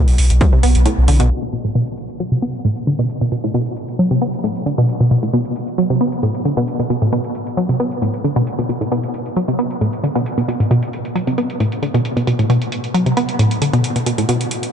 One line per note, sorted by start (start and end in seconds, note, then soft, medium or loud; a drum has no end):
0.08 0.18 B1 medium
0.08 open hi-hat medium
0.18 0.30 B1 loud
0.18 open hi-hat loud
0.30 0.41 B1 medium
0.30 closed hi-hat medium
0.41 0.46 F#3 medium
0.41 kick loud
0.41 closed hi-hat medium
0.53 0.63 B1 medium
0.53 0.60 C3 medium
0.63 0.75 B1 loud
0.63 0.69 B3 medium
0.63 open hi-hat loud
0.75 0.85 B1 medium
0.75 closed hi-hat medium
0.86 0.94 A2 medium
0.86 closed hi-hat medium
0.97 1.08 B1 medium
1.08 1.19 B1 loud
1.08 1.13 D3 medium
1.08 open hi-hat loud
1.20 1.30 B1 medium
1.20 1.25 B2 loud
1.20 closed hi-hat medium
1.30 closed hi-hat medium
1.42 1.47 B2 medium
1.42 closed hi-hat medium
1.53 1.56 B2 medium
1.53 closed hi-hat medium
1.65 1.68 A2 medium
1.65 closed hi-hat medium
1.75 1.79 B2 loud
1.75 closed hi-hat medium
1.87 closed hi-hat medium
1.98 closed hi-hat medium
2.09 closed hi-hat medium
2.20 2.25 F#3 medium
2.20 closed hi-hat medium
2.32 2.39 C3 medium
2.32 closed hi-hat medium
2.42 2.48 B3 medium
2.42 closed hi-hat medium
2.54 closed hi-hat medium
2.65 2.73 A2 medium
2.65 closed hi-hat medium
2.77 closed hi-hat medium
2.87 2.93 D3 medium
2.87 closed hi-hat medium
2.99 3.04 B2 loud
2.99 closed hi-hat medium
3.10 closed hi-hat medium
3.21 3.26 B2 medium
3.21 closed hi-hat medium
3.32 3.35 B2 medium
3.32 closed hi-hat medium
3.44 3.47 A2 medium
3.44 closed hi-hat medium
3.54 3.58 B2 loud
3.54 closed hi-hat medium
3.66 closed hi-hat medium
3.77 closed hi-hat medium
3.88 closed hi-hat medium
3.99 4.05 F#3 medium
3.99 closed hi-hat medium
4.11 4.18 C3 medium
4.11 closed hi-hat medium
4.21 4.27 B3 medium
4.21 closed hi-hat medium
4.33 closed hi-hat medium
4.44 4.52 A2 medium
4.44 closed hi-hat medium
4.56 closed hi-hat medium
4.66 4.72 D3 medium
4.66 closed hi-hat medium
4.78 4.83 B2 loud
4.78 closed hi-hat medium
4.89 closed hi-hat medium
5.00 5.05 B2 medium
5.00 closed hi-hat medium
5.11 5.14 B2 medium
5.11 closed hi-hat medium
5.23 5.26 A2 medium
5.23 closed hi-hat medium
5.33 5.37 B2 loud
5.33 closed hi-hat medium
5.45 closed hi-hat medium
5.56 closed hi-hat medium
5.68 closed hi-hat medium
5.78 5.84 F#3 medium
5.78 closed hi-hat medium
5.90 5.97 C3 medium
5.90 closed hi-hat medium
6.01 6.06 B3 medium
6.01 closed hi-hat medium
6.12 closed hi-hat medium
6.23 6.31 A2 medium
6.23 closed hi-hat medium
6.35 closed hi-hat medium
6.45 6.51 D3 medium
6.45 closed hi-hat medium
6.57 6.62 B2 loud
6.57 closed hi-hat medium
6.68 closed hi-hat medium
6.80 6.84 B2 medium
6.80 closed hi-hat soft
6.90 6.93 B2 medium
6.90 closed hi-hat medium
7.02 7.05 A2 medium
7.02 closed hi-hat soft
7.12 7.16 B2 loud
7.12 closed hi-hat medium
7.24 closed hi-hat soft
7.35 closed hi-hat medium
7.47 closed hi-hat soft
7.57 7.63 F#3 medium
7.57 closed hi-hat medium
7.69 7.76 C3 medium
7.69 closed hi-hat soft
7.80 7.85 B3 medium
7.80 closed hi-hat medium
7.92 closed hi-hat soft
8.02 8.10 A2 medium
8.02 closed hi-hat medium
8.14 closed hi-hat medium
8.24 8.30 D3 medium
8.24 closed hi-hat medium
8.36 8.41 B2 loud
8.36 closed hi-hat soft
8.47 closed hi-hat medium
8.59 8.64 B2 medium
8.59 closed hi-hat soft
8.69 8.72 B2 medium
8.69 closed hi-hat medium
8.81 8.84 A2 medium
8.81 closed hi-hat soft
8.92 8.95 B2 loud
8.92 closed hi-hat medium
9.04 closed hi-hat soft
9.14 closed hi-hat medium
9.26 closed hi-hat soft
9.36 9.42 F#3 medium
9.36 closed hi-hat medium
9.48 9.55 C3 medium
9.48 closed hi-hat soft
9.59 9.64 B3 medium
9.59 closed hi-hat medium
9.71 closed hi-hat soft
9.81 9.89 A2 medium
9.81 closed hi-hat medium
9.93 closed hi-hat soft
10.04 10.09 D3 medium
10.04 closed hi-hat medium
10.15 10.20 B2 loud
10.15 closed hi-hat soft
10.26 closed hi-hat medium
10.38 10.43 B2 medium
10.38 closed hi-hat soft
10.48 10.52 B2 medium
10.48 closed hi-hat medium
10.60 10.63 A2 medium
10.60 closed hi-hat soft
10.71 10.74 B2 loud
10.71 closed hi-hat medium
10.83 closed hi-hat soft
10.93 closed hi-hat medium
11.05 closed hi-hat soft
11.15 11.21 F#3 medium
11.15 closed hi-hat medium
11.27 11.35 C3 medium
11.27 closed hi-hat soft
11.38 11.43 B3 medium
11.38 closed hi-hat medium
11.50 closed hi-hat soft
11.60 11.68 A2 medium
11.60 closed hi-hat medium
11.72 closed hi-hat soft
11.83 11.88 D3 medium
11.83 closed hi-hat medium
11.94 11.99 B2 loud
11.94 closed hi-hat soft
12.05 closed hi-hat medium
12.17 12.22 B2 medium
12.17 closed hi-hat medium
12.27 12.31 B2 medium
12.27 closed hi-hat medium
12.39 12.42 A2 medium
12.39 closed hi-hat medium
12.50 12.53 B2 loud
12.50 closed hi-hat medium
12.62 closed hi-hat soft
12.72 closed hi-hat medium
12.84 closed hi-hat medium
12.94 13.00 F#3 medium
12.94 closed hi-hat medium
13.06 13.14 C3 medium
13.06 closed hi-hat soft
13.17 13.22 B3 medium
13.17 closed hi-hat medium
13.29 closed hi-hat medium
13.39 13.47 A2 medium
13.39 closed hi-hat medium
13.51 closed hi-hat medium
13.62 13.67 D3 medium
13.62 closed hi-hat medium
13.73 13.78 B2 loud
13.73 closed hi-hat medium
13.84 closed hi-hat medium
13.96 14.01 B2 medium
13.96 closed hi-hat medium
14.06 14.10 B2 medium
14.06 closed hi-hat medium
14.18 14.21 A2 medium
14.18 closed hi-hat medium
14.29 14.32 B2 loud
14.29 closed hi-hat medium
14.41 closed hi-hat medium
14.51 closed hi-hat medium
14.63 closed hi-hat medium